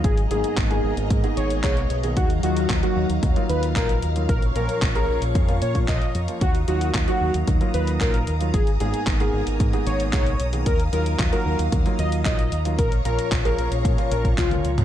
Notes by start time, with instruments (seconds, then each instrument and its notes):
Already playing: string machine D#5 A#5
0.04 fingered electric bass G#1, string machine G#4 G#5, analog synth lead G#4, kick, closed hi-hat
0.17 closed hi-hat
0.31 fingered electric bass G#1, grand piano G#2 A#3 B3 D#4 G#4, analog synth lead G#4, closed hi-hat
0.44 closed hi-hat
0.57 fingered electric bass G#1, kick, clap, closed hi-hat
0.71 grand piano G#2 A#3 B3 D#4 A#4, analog synth lead G#4, closed hi-hat
0.84 fingered electric bass G#1
0.97 fingered electric bass G#1, closed hi-hat
1.10 fingered electric bass G#2, kick, closed hi-hat
1.24 grand piano G#2 A#3 B3 D#4 G#4, closed hi-hat
1.37 fingered electric bass G#1, analog synth lead C#5, closed hi-hat
1.50 closed hi-hat
1.63 fingered electric bass B1, grand piano G#2 A#3 B3 D#4 G#4, analog synth lead C#5, kick, clap, closed hi-hat
1.77 closed hi-hat
1.90 fingered electric bass B1, closed hi-hat
2.03 grand piano D#3 A#3 B3 D#4 G#4, closed hi-hat
2.17 fingered electric bass D#2, string machine F#3 F5, analog synth lead F#4, kick, closed hi-hat
2.30 closed hi-hat
2.43 fingered electric bass D#2, grand piano F#3 A#3 D#4 F4, analog synth lead F#4, closed hi-hat
2.57 closed hi-hat
2.70 fingered electric bass D#2, kick, clap, closed hi-hat
2.83 grand piano F#3 A#3 D#4 F#4, analog synth lead F#4, closed hi-hat
2.96 fingered electric bass D#2
3.10 fingered electric bass D#2, closed hi-hat
3.23 fingered electric bass D#2, kick, closed hi-hat
3.36 grand piano F#3 A#3 D#4 F4, closed hi-hat
3.49 fingered electric bass D#2, analog synth lead B4, closed hi-hat
3.63 closed hi-hat
3.76 fingered electric bass A#1, grand piano F#3 A#3 D#4 F4, analog synth lead A#4, kick, clap, closed hi-hat
3.89 closed hi-hat
4.02 fingered electric bass D#2, closed hi-hat
4.16 grand piano F#3 A#3 D#4 F4, closed hi-hat
4.29 fingered electric bass A#1, analog synth lead A#4, string machine C#5 A#5 C#6, kick, closed hi-hat
4.42 closed hi-hat
4.56 fingered electric bass A#1, grand piano A#2 F3 A#3 C#4 F4, analog synth lead A#4, closed hi-hat
4.69 closed hi-hat
4.82 fingered electric bass A#1, kick, clap, closed hi-hat
4.95 grand piano A#2 F3 A#3 C#4 G#4, analog synth lead A#4, closed hi-hat
5.09 fingered electric bass A#1
5.22 fingered electric bass A#1, closed hi-hat
5.35 fingered electric bass F2, kick, closed hi-hat
5.48 grand piano A#2 F3 A#3 C#4 F4, closed hi-hat
5.62 fingered electric bass A#2, analog synth lead C#5, closed hi-hat
5.75 kick, closed hi-hat
5.88 fingered electric bass A#1, grand piano A#2 F3 A#3 C#4 F4, analog synth lead D#5, kick, clap, closed hi-hat
6.02 closed hi-hat
6.15 fingered electric bass F2, closed hi-hat
6.28 grand piano F3 A#3 C#4 F4, closed hi-hat
6.41 fingered electric bass D#2, analog synth lead F#4, string machine D#6, kick, closed hi-hat
6.55 closed hi-hat
6.68 fingered electric bass D#2, grand piano F#3 A#3 D#4 F4, analog synth lead F#4, closed hi-hat
6.81 closed hi-hat
6.94 fingered electric bass D#2, kick, clap, closed hi-hat
7.08 grand piano F#3 A#3 D#4 F#4, analog synth lead F#4, closed hi-hat
7.21 fingered electric bass D#2
7.34 fingered electric bass D#2, closed hi-hat
7.47 fingered electric bass D#2, kick, closed hi-hat
7.61 grand piano F#3 A#3 D#4 F4, closed hi-hat
7.74 fingered electric bass D#2, analog synth lead B4, closed hi-hat
7.87 closed hi-hat
8.01 fingered electric bass A#1, grand piano F#3 A#3 D#4 F4, analog synth lead A#4, kick, clap, closed hi-hat
8.14 closed hi-hat
8.27 fingered electric bass D#2, closed hi-hat
8.41 grand piano F#3 A#3 D#4 F4, closed hi-hat
8.54 fingered electric bass G#1, analog synth lead G#4, string machine G#5, kick, closed hi-hat
8.67 closed hi-hat
8.80 fingered electric bass G#1, grand piano G#2 A#3 B3 D#4 G#4, analog synth lead G#4, closed hi-hat
8.94 closed hi-hat
9.07 fingered electric bass G#1, kick, clap, closed hi-hat
9.20 grand piano G#2 A#3 B3 D#4 A#4, analog synth lead G#4, closed hi-hat
9.34 fingered electric bass G#1
9.47 fingered electric bass G#1, closed hi-hat
9.60 fingered electric bass G#2, kick, closed hi-hat
9.73 grand piano G#2 A#3 B3 D#4 G#4, closed hi-hat
9.87 fingered electric bass G#1, analog synth lead C#5, closed hi-hat
10.00 closed hi-hat
10.13 fingered electric bass B1, grand piano G#2 A#3 B3 D#4 G#4, analog synth lead C#5, kick, clap, closed hi-hat
10.27 closed hi-hat
10.40 fingered electric bass B1, closed hi-hat
10.53 grand piano D#3 A#3 B3 D#4 G#4, closed hi-hat
10.66 fingered electric bass D#2, analog synth lead A#4, string machine F5, kick, closed hi-hat
10.80 closed hi-hat
10.93 fingered electric bass D#2, grand piano F#3 A#3 D#4 F4, analog synth lead A#4, closed hi-hat
11.06 closed hi-hat
11.19 fingered electric bass D#2, kick, clap, closed hi-hat
11.33 grand piano F#3 A#3 D#4 F#4, analog synth lead A#4, closed hi-hat
11.46 fingered electric bass D#2
11.59 fingered electric bass D#2, closed hi-hat
11.72 fingered electric bass D#2, kick, closed hi-hat
11.86 grand piano F#3 A#3 D#4 F4, closed hi-hat
11.99 fingered electric bass D#2, analog synth lead D#5, closed hi-hat
12.12 closed hi-hat
12.25 fingered electric bass A#1, grand piano F#3 A#3 D#4 F4, analog synth lead D#5, kick, clap, closed hi-hat
12.39 closed hi-hat
12.52 fingered electric bass D#2, closed hi-hat
12.65 grand piano F#3 A#3 D#4 F4, closed hi-hat
12.78 fingered electric bass A#1, analog synth lead A#4, string machine C#5 F5 C#6, kick, closed hi-hat
12.92 closed hi-hat
13.05 fingered electric bass A#1, grand piano A#2 F3 A#3 C#4 F4, analog synth lead A#4, closed hi-hat
13.19 closed hi-hat
13.32 fingered electric bass A#1, kick, clap, closed hi-hat
13.45 grand piano A#2 F3 A#3 C#4 G#4, analog synth lead A#4, closed hi-hat
13.58 fingered electric bass A#1, closed hi-hat
13.72 fingered electric bass A#1, closed hi-hat
13.85 fingered electric bass A#2, kick, closed hi-hat
13.98 grand piano A#2 F3 A#3 C#4 F4, closed hi-hat
14.11 fingered electric bass A#1, grand piano A#2 F3 A#3 C#4 F4, analog synth lead A#4, closed hi-hat
14.25 kick, closed hi-hat
14.38 fingered electric bass C#2, analog synth lead F4, kick, clap, closed hi-hat, high tom
14.51 grand piano A#2 F3 A#3 C#4 F4, closed hi-hat, high tom
14.65 fingered electric bass C#2, closed hi-hat
14.78 closed hi-hat, mid tom